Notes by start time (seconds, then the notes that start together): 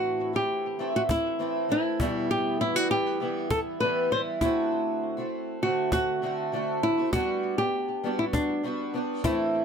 Already playing: A2 E3 A3 C4 E4 F#4
0.33 A3 C4 E4 G4
0.79 E3 A3 C4 E4
0.96 F#4
1.09 E4, cajon bass
1.39 E3 A3 C4 E4
1.69 E3 A3 C4 E4
2.00 E2 B2 E3 G3 B3 E4, cajon bass
2.31 G4
2.61 E4
2.74 E3 G3 B3 E4 F#4
2.91 G4
3.20 E3 G3 B3 E4
3.50 A4, cajon bass
3.80 E3 G3 B3 E4 B4
4.11 E3 G3 E4 C5
4.41 D3 A3 C4 E4 F#4, cajon bass
5.17 A3 C4 F#4
5.62 D3 A3 C4 F#4
5.92 F#4, cajon bass
6.22 D3 A3 C4 F#4
6.52 D3 A3 C4 F#4
6.83 E4
6.98 A3 C4 F#4
7.13 G3 B3 D4 F#4, cajon bass
7.58 B3 D4 G4
8.03 G3 B3 D4 F#4
8.19 E4
8.33 D4, cajon bass
8.63 G3 B3 D4 F#4
8.94 G3 B3 D4 F#4
9.24 A2 E3 A3 C4 E4, cajon bass